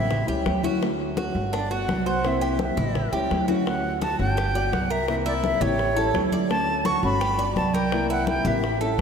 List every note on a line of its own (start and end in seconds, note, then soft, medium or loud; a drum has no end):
0.00 0.26 A1 loud
0.00 0.10 C4 medium
0.00 0.27 E4 medium
0.00 0.26 E5 medium
0.10 muted nylon-string guitar stroke medium
0.10 high bongo medium
0.10 high conga soft
0.10 low conga medium
0.27 0.45 C#2 medium
0.27 0.45 G3 medium
0.27 0.45 C#4 medium
0.27 0.45 E4 medium
0.27 0.63 G4 medium
0.27 high bongo soft
0.27 high conga soft
0.45 1.29 D2 medium
0.45 0.63 E3 soft
0.45 0.63 G3 medium
0.45 0.63 C#4 medium
0.45 0.62 E4 medium
0.45 high bongo medium
0.45 low bongo medium
0.45 high conga medium
0.63 0.81 G3 medium
0.63 0.81 C#4 medium
0.63 0.81 E4 medium
0.63 0.81 F#4 medium
0.63 high bongo soft
0.63 high conga medium
0.81 1.16 D3 medium
0.81 1.16 A3 medium
0.81 1.17 C#4 medium
0.81 1.17 F#4 medium
0.81 high bongo medium
0.81 high conga soft
0.99 high conga soft
1.17 1.52 D3 medium
1.17 1.52 A3 soft
1.17 1.52 C#4 medium
1.17 1.52 F#4 medium
1.17 high bongo medium
1.17 high conga medium
1.35 1.85 G1 loud
1.35 high conga soft
1.53 1.70 D4 medium
1.53 1.71 D5 medium
1.53 muted nylon-string guitar stroke medium
1.53 high bongo medium
1.53 high conga soft
1.70 1.88 B3 medium
1.70 1.88 F#4 medium
1.70 2.05 F#4 medium
1.70 2.05 F#5 medium
1.70 high conga soft
1.88 2.71 C2 medium
1.88 2.05 G3 soft
1.88 2.06 B3 medium
1.88 2.05 F#4 medium
1.88 high bongo medium
1.88 low bongo medium
1.88 high conga medium
2.06 2.24 B3 medium
2.06 2.23 F#4 medium
2.06 2.41 C5 medium
2.06 2.29 F#5 medium
2.24 2.59 C3 medium
2.24 2.58 E3 medium
2.24 2.59 A#3 medium
2.24 2.59 C4 medium
2.24 2.60 E4 medium
2.24 2.61 E5 medium
2.24 high bongo medium
2.24 high conga soft
2.41 2.76 G4 medium
2.41 high bongo soft
2.41 high conga soft
2.59 2.94 E3 soft
2.59 2.95 A#3 medium
2.59 2.95 C4 medium
2.59 2.95 E4 medium
2.59 3.11 E5 medium
2.59 high bongo medium
2.59 high conga medium
2.77 3.10 A1 loud
2.77 3.12 E4 medium
2.77 high conga medium
2.77 low conga medium
2.95 muted nylon-string guitar stroke medium
2.95 high bongo medium
2.95 high conga soft
2.95 low conga medium
3.13 3.29 C#2 medium
3.13 3.30 G3 medium
3.13 3.30 C#4 medium
3.13 3.30 E4 medium
3.13 3.47 G4 medium
3.13 high bongo soft
3.13 high conga soft
3.31 4.14 D2 medium
3.31 3.48 E3 soft
3.31 3.48 G3 soft
3.31 3.48 C#4 soft
3.31 3.47 E4 medium
3.31 high bongo medium
3.31 low bongo medium
3.31 high conga medium
3.48 3.66 G3 medium
3.48 3.65 C#4 medium
3.48 3.65 E4 medium
3.48 3.65 F#4 medium
3.48 high bongo soft
3.48 high conga medium
3.66 4.18 D3 medium
3.66 4.19 A3 medium
3.66 4.18 C#4 medium
3.66 4.18 F#4 medium
3.66 4.00 F#5 medium
3.66 high bongo medium
3.66 high conga soft
3.84 high conga soft
4.01 4.36 F#4 medium
4.01 4.19 A5 medium
4.01 high bongo medium
4.01 high conga medium
4.19 4.69 G1 loud
4.19 4.36 A3 medium
4.19 4.37 C#4 medium
4.19 4.36 F#4 medium
4.19 4.75 G5 loud
4.19 high conga soft
4.37 4.54 G4 medium
4.37 muted nylon-string guitar stroke medium
4.37 high bongo medium
4.37 high conga soft
4.55 4.72 B3 medium
4.55 4.72 F#4 medium
4.55 4.89 D5 medium
4.55 high conga soft
4.72 5.55 C2 medium
4.72 5.07 G3 medium
4.72 5.08 B3 medium
4.72 5.08 F#4 medium
4.72 4.93 F#5 medium
4.72 high bongo medium
4.72 low bongo medium
4.72 high conga medium
4.90 5.25 A#4 medium
4.90 5.09 E5 medium
5.08 5.60 C3 medium
5.08 5.61 E3 medium
5.08 5.61 A#3 medium
5.08 5.60 C4 medium
5.08 5.60 E4 medium
5.08 5.15 E5 loud
5.08 high bongo medium
5.08 high conga soft
5.26 5.60 E4 medium
5.26 5.33 D5 medium
5.26 high bongo soft
5.26 high conga soft
5.43 5.63 E5 loud
5.43 high bongo medium
5.43 high conga medium
5.61 6.11 A1 loud
5.61 5.77 E3 medium
5.61 5.78 A#3 medium
5.61 5.78 C4 medium
5.61 5.78 E4 medium
5.61 5.96 G4 medium
5.61 6.32 C#5 loud
5.61 high conga loud
5.61 low conga medium
5.79 muted nylon-string guitar stroke medium
5.79 high bongo medium
5.79 high conga soft
5.96 6.13 G3 medium
5.96 6.13 C#4 medium
5.96 6.13 E4 medium
5.96 6.31 A4 medium
5.96 high bongo soft
5.96 high conga soft
6.14 6.97 D2 medium
6.14 6.49 E3 soft
6.14 6.49 G3 medium
6.14 6.49 C#4 medium
6.14 6.50 E4 medium
6.14 high bongo medium
6.14 low bongo medium
6.14 high conga medium
6.32 6.50 D5 medium
6.32 high bongo soft
6.32 high conga medium
6.49 7.02 D3 medium
6.49 7.02 A3 medium
6.49 7.03 C#4 medium
6.49 7.02 F#4 medium
6.49 6.87 A5 loud
6.49 high bongo medium
6.49 high conga soft
6.68 high conga soft
6.85 7.20 F#4 medium
6.85 7.03 C#6 loud
6.85 high bongo medium
6.85 high conga loud
7.03 7.53 G1 loud
7.03 7.20 A3 medium
7.03 7.20 C#4 medium
7.03 7.20 F#4 medium
7.03 7.53 B5 loud
7.03 high conga soft
7.20 7.38 G4 medium
7.20 muted nylon-string guitar stroke medium
7.20 high bongo medium
7.20 high conga soft
7.38 7.55 B3 medium
7.38 7.55 F#4 medium
7.38 7.73 D5 medium
7.38 high conga soft
7.56 8.39 C2 medium
7.56 7.91 G3 medium
7.56 7.91 B3 medium
7.56 7.92 F#4 medium
7.56 7.75 A5 medium
7.56 high bongo medium
7.56 low bongo medium
7.56 high conga medium
7.74 8.09 A#4 medium
7.74 8.10 G5 loud
7.74 high conga medium
7.92 8.44 C3 medium
7.92 8.45 E3 medium
7.92 8.45 A#3 medium
7.92 8.45 C4 medium
7.92 8.44 E4 medium
7.92 high bongo medium
8.10 8.44 E4 medium
8.10 8.27 F#5 loud
8.10 high bongo soft
8.10 high conga soft
8.27 8.49 G5 loud
8.27 high bongo medium
8.27 high conga medium
8.45 8.94 A1 loud
8.45 8.62 E3 medium
8.45 8.63 A#3 medium
8.45 8.63 C4 medium
8.45 8.62 E4 medium
8.45 8.80 G4 medium
8.45 8.90 E5 medium
8.45 high conga medium
8.45 low conga medium
8.63 muted nylon-string guitar stroke medium
8.63 high bongo medium
8.63 high conga soft
8.81 8.98 G3 medium
8.81 8.98 C#4 medium
8.81 8.98 E4 medium
8.81 9.01 A4 medium
8.81 high bongo soft
8.81 high conga soft
8.98 9.01 D2 medium